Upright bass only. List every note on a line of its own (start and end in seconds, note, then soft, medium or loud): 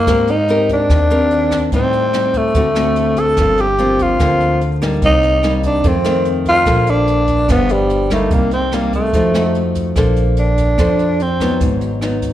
0.07 0.86 G#2 medium
0.89 1.68 D#2 medium
1.72 2.51 A2 medium
2.55 3.33 D2 medium
3.37 4.16 G1 medium
4.20 4.98 D2 medium
5.02 5.80 C2 medium
5.84 6.62 F2 medium
6.66 7.45 A#1 medium
7.48 8.27 G1 medium
8.31 9.09 C2 medium
9.13 9.92 F2 medium
9.95 10.74 A#1 medium
10.78 11.56 F2 medium
11.60 12.33 G#1 medium